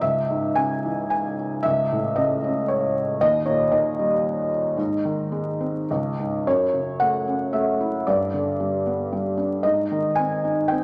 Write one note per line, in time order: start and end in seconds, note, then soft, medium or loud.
0.01 1.60 C#2 medium
0.01 0.57 E5 medium
0.30 1.34 G#2 medium
0.55 1.62 C#3 soft
0.55 1.09 G#5 loud
0.85 1.63 E3 soft
1.10 1.66 G#5 medium
1.63 3.18 C#2 medium
1.63 2.18 E5 loud
1.92 2.93 A2 medium
2.16 3.18 C#3 soft
2.16 2.65 D#5 medium
2.44 3.19 C#4 medium
2.68 3.22 C#5 medium
3.21 4.74 D#2 medium
3.21 3.48 D#5 loud
3.46 4.48 A#2 medium
3.46 3.73 C#5 medium
3.72 4.74 D#3 medium
3.72 5.85 D#5 medium
3.99 4.76 G3 medium
4.77 5.86 G#2 medium
5.05 5.87 D#3 medium
5.32 5.88 G#3 medium
5.60 5.89 C4 soft
5.91 6.45 C#2 medium
6.19 6.46 G#2 soft
6.46 8.02 F#2 medium
6.46 7.02 C#5 medium
6.73 7.77 C#3 soft
7.00 7.52 A3 soft
7.00 7.55 F#5 medium
7.28 8.04 C#4 soft
7.53 8.05 A3 medium
7.53 8.08 E5 medium
7.80 8.06 E4 soft
8.07 9.61 G2 medium
8.07 9.35 D5 medium
8.34 9.36 D3 soft
8.60 9.11 G3 soft
8.86 9.62 B3 soft
9.13 9.63 G3 medium
9.37 9.63 D4 soft
9.63 10.84 G#2 medium
9.63 10.13 D#5 medium
9.91 10.84 D#3 medium
10.15 10.70 C4 medium
10.15 10.71 G#5 medium
10.45 10.84 D#4 soft
10.68 10.84 C4 medium
10.68 10.84 G5 medium